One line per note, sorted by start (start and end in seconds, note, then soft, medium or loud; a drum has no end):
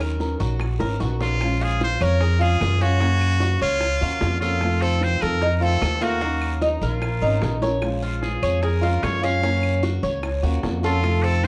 0.00 0.35 D#2 medium
0.00 0.18 D#3 medium
0.00 0.18 F#3 medium
0.00 0.19 C#4 medium
0.00 0.19 D#4 medium
0.00 0.20 A#4 medium
0.00 0.39 A#4 medium
0.00 high bongo soft
0.00 claves medium
0.19 0.39 D#3 medium
0.19 0.39 F#3 medium
0.19 0.40 C#4 medium
0.19 0.39 D#4 medium
0.19 0.37 A#4 medium
0.19 high bongo medium
0.19 short guiro medium
0.39 0.78 A#1 medium
0.39 0.58 C#4 soft
0.39 0.58 D#4 soft
0.39 0.79 F#4 medium
0.39 0.58 A#4 soft
0.39 short guiro medium
0.59 muted nylon-string guitar stroke medium
0.59 high bongo medium
0.59 long guiro medium
0.59 claves medium
0.79 0.99 G#1 medium
0.79 0.98 F#3 medium
0.79 0.99 C#4 medium
0.79 0.99 D#4 medium
0.79 0.99 A#4 medium
0.79 1.00 A#4 medium
0.79 high bongo loud
0.99 1.95 A#1 medium
0.99 1.19 F#3 medium
0.99 1.20 C#4 medium
0.99 1.19 D#4 medium
0.99 1.39 F#4 medium
0.99 1.18 A#4 medium
0.99 high bongo medium
0.99 short guiro medium
1.19 1.40 C#4 soft
1.19 1.40 D#4 soft
1.19 1.64 F4 loud
1.19 1.39 A#4 soft
1.19 low bongo medium
1.19 short guiro medium
1.40 2.19 F3 medium
1.40 2.19 G#3 medium
1.40 2.20 C#4 medium
1.40 2.20 F4 medium
1.40 high bongo medium
1.40 long guiro medium
1.40 claves medium
1.61 2.00 F4 medium
1.61 1.82 G#4 medium
1.80 2.05 C5 loud
1.80 high bongo medium
1.80 short guiro medium
2.01 2.57 F2 loud
2.01 2.43 A#4 loud
2.01 2.21 C#5 medium
2.01 short guiro medium
2.01 claves medium
2.20 2.40 G#4 medium
2.20 muted nylon-string guitar stroke medium
2.20 high bongo medium
2.20 long guiro medium
2.39 2.59 G#3 medium
2.39 2.60 C#4 medium
2.39 2.59 F4 medium
2.39 2.80 F4 medium
2.39 2.83 G#4 loud
2.60 3.55 F#2 medium
2.60 2.80 F3 medium
2.60 2.80 G#3 medium
2.60 2.80 C#4 medium
2.60 high bongo medium
2.60 low bongo medium
2.60 short guiro medium
2.60 claves medium
2.81 3.00 G#3 medium
2.81 3.00 C#4 medium
2.81 3.00 F4 medium
2.81 3.62 F#4 loud
2.81 short guiro medium
2.99 3.79 C#3 medium
2.99 3.80 A#3 medium
2.99 3.40 C#4 medium
2.99 3.80 C#4 medium
2.99 3.80 F#4 medium
2.99 high bongo medium
2.99 long guiro medium
3.20 high bongo soft
3.20 claves medium
3.40 3.61 F#4 medium
3.40 high bongo medium
3.40 short guiro medium
3.61 3.98 C#2 medium
3.61 4.38 F4 loud
3.61 4.00 C#5 medium
3.61 high bongo soft
3.61 short guiro medium
3.81 muted nylon-string guitar stroke medium
3.81 high bongo medium
3.81 long guiro medium
3.81 claves medium
4.01 4.20 D#2 medium
4.01 4.20 F3 medium
4.01 4.20 A#3 medium
4.01 4.21 C#4 medium
4.01 4.41 F4 medium
4.01 4.20 F#4 medium
4.21 5.16 F2 medium
4.21 4.40 F3 medium
4.21 4.40 A#3 medium
4.21 4.40 C#4 medium
4.21 4.39 F#4 medium
4.21 high bongo medium
4.21 low bongo medium
4.21 short guiro medium
4.40 4.61 F3 medium
4.40 4.61 A#3 medium
4.40 4.60 C#4 medium
4.40 4.83 F4 medium
4.40 4.60 F#4 medium
4.40 4.81 A4 medium
4.40 high bongo soft
4.40 short guiro medium
4.60 5.40 C3 medium
4.60 5.41 D#3 medium
4.60 5.40 A3 medium
4.60 5.41 C4 medium
4.60 5.41 F4 medium
4.60 high bongo medium
4.60 long guiro medium
4.60 claves medium
4.81 5.21 C4 medium
4.81 5.05 A4 medium
5.01 5.23 C5 loud
5.01 high bongo medium
5.01 short guiro medium
5.21 5.78 F2 loud
5.21 5.41 A4 medium
5.21 5.56 A#4 loud
5.21 short guiro medium
5.21 claves medium
5.41 5.61 D#4 medium
5.41 muted nylon-string guitar stroke medium
5.41 high bongo medium
5.41 long guiro medium
5.56 5.64 A#4 medium
5.60 5.80 D#3 medium
5.60 5.80 A3 medium
5.60 5.80 C4 medium
5.60 6.01 C4 medium
5.60 5.80 F4 medium
5.60 6.05 A4 loud
5.81 6.76 D#2 loud
5.81 6.00 D#3 medium
5.81 6.01 A3 medium
5.81 6.01 C4 medium
5.81 high bongo medium
5.81 low bongo medium
5.81 short guiro medium
5.81 claves medium
6.01 6.20 D#3 medium
6.01 6.21 A3 medium
6.01 6.21 A#3 medium
6.01 6.21 C4 medium
6.01 6.21 F4 medium
6.01 6.56 F#4 loud
6.01 short guiro medium
6.21 7.00 D#3 medium
6.21 7.01 F#3 medium
6.21 6.61 A#3 medium
6.21 7.01 C#4 medium
6.21 7.01 D#4 medium
6.21 7.02 A#4 medium
6.21 high bongo medium
6.21 long guiro medium
6.42 high bongo soft
6.42 claves medium
6.61 6.81 D#4 medium
6.61 high bongo medium
6.61 short guiro medium
6.81 7.19 A#1 loud
6.81 7.59 F4 medium
6.81 7.21 A#4 medium
6.81 high bongo soft
6.81 short guiro medium
7.01 muted nylon-string guitar stroke medium
7.01 high bongo medium
7.01 long guiro medium
7.01 claves medium
7.22 7.40 G#1 medium
7.22 7.41 F#3 medium
7.22 7.42 C#4 medium
7.22 7.61 D#4 medium
7.22 7.41 D#4 medium
7.22 7.41 A#4 medium
7.42 8.36 A#1 medium
7.42 7.61 F#3 soft
7.42 7.61 C#4 medium
7.42 7.62 D#4 medium
7.42 7.61 A#4 medium
7.42 high bongo medium
7.42 low bongo medium
7.42 short guiro medium
7.62 7.80 F#3 medium
7.62 7.82 C#4 medium
7.62 7.82 D#4 medium
7.62 7.81 A#4 medium
7.62 8.01 C#5 medium
7.62 high bongo medium
7.62 short guiro medium
7.81 8.62 F3 medium
7.81 8.61 G#3 medium
7.81 8.63 C#4 medium
7.81 8.63 F4 medium
7.81 high bongo medium
7.81 long guiro medium
7.81 claves medium
8.03 8.41 F4 medium
8.22 8.64 G#4 medium
8.22 high bongo medium
8.22 short guiro medium
8.42 8.99 F2 medium
8.42 8.62 C#5 medium
8.42 short guiro medium
8.42 claves medium
8.62 8.82 G#4 medium
8.62 9.05 A#4 medium
8.62 muted nylon-string guitar stroke medium
8.62 high bongo medium
8.62 long guiro medium
8.81 9.01 G#3 medium
8.81 9.02 C#4 medium
8.81 9.01 F4 medium
8.81 9.22 F4 medium
9.02 9.97 F#2 medium
9.02 9.21 F3 medium
9.02 9.22 G#3 medium
9.02 9.21 C#4 medium
9.02 9.26 C#5 loud
9.02 high bongo medium
9.02 low bongo medium
9.02 short guiro medium
9.02 claves medium
9.21 9.42 G#3 medium
9.21 9.42 C#4 medium
9.21 9.41 F4 medium
9.21 10.04 F5 loud
9.21 short guiro medium
9.42 10.22 C#3 medium
9.42 10.22 A#3 medium
9.42 9.82 C#4 medium
9.42 10.23 C#4 medium
9.42 10.23 F#4 medium
9.42 high bongo medium
9.42 long guiro medium
9.63 high bongo soft
9.63 claves medium
9.83 10.02 F#4 medium
9.83 high bongo medium
9.83 short guiro medium
10.03 10.40 C#2 medium
10.03 10.42 C#5 medium
10.03 high bongo soft
10.03 short guiro medium
10.23 muted nylon-string guitar stroke medium
10.23 high bongo medium
10.23 long guiro medium
10.23 claves medium
10.43 10.62 D#2 medium
10.43 10.61 F3 medium
10.43 10.62 A#3 medium
10.43 10.62 C#4 medium
10.43 10.62 F#4 medium
10.43 10.82 F#4 medium
10.62 11.47 F2 medium
10.62 10.82 F3 medium
10.62 10.82 A#3 medium
10.62 10.82 C#4 medium
10.62 10.81 F#4 medium
10.62 high bongo medium
10.62 low bongo medium
10.62 short guiro medium
10.83 11.03 F3 medium
10.83 11.03 A#3 medium
10.83 11.03 C#4 medium
10.83 11.25 F4 medium
10.83 11.02 F#4 medium
10.83 11.23 A4 medium
10.83 high bongo soft
10.83 short guiro medium
11.02 11.47 C3 medium
11.02 11.47 D#3 medium
11.02 11.47 A3 medium
11.02 11.47 C4 medium
11.02 11.47 F4 medium
11.02 high bongo medium
11.02 long guiro medium
11.02 claves medium
11.23 11.47 C4 medium
11.23 11.46 A4 loud
11.44 high bongo medium
11.44 short guiro medium